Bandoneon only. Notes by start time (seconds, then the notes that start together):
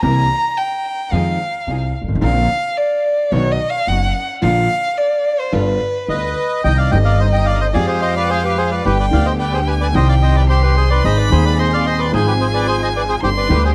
6.09 B4 D#5
6.64 D#5 G5
6.78 D5 F5
6.91 D#5 G5
7.05 D5 F5
7.19 C5 D#5
7.32 D#5 G5
7.46 D5 F5
7.60 C5 D#5
7.74 G#4 D5
7.87 G#4 C5
8.01 C5 D#5
8.16 B4 D5
8.29 G#4 C5
8.44 G4 B4
8.58 G#4 C5
8.71 B4 D5
8.85 G4 B4
9.00 B4 D5
9.13 D5 F5
9.26 C5 D#5
9.39 B4 D5
9.53 G#4 C5
9.67 G4 B4
9.81 B4 D5
9.95 C5 D#5
10.09 D5 F5
10.22 C5 D#5
10.36 B4 D5
10.50 G4 C5
10.62 G4 B4
10.76 G#4 C5
10.90 B4 D5
11.05 C5 D#5
11.17 B4 D5
11.32 G#4 C5
11.45 B4 D5
11.59 C5 D#5
11.73 D5 F5
11.86 C5 D#5
11.99 B4 D5
12.13 G#4 C5
12.27 G4 B4
12.41 G#4 C5
12.54 B4 D5
12.68 G#4 C5
12.82 C5 D#5
12.96 B4 D5
13.09 G#4 C5
13.23 G4 C5
13.37 B4 D5
13.50 G4 B4
13.65 G#4 C5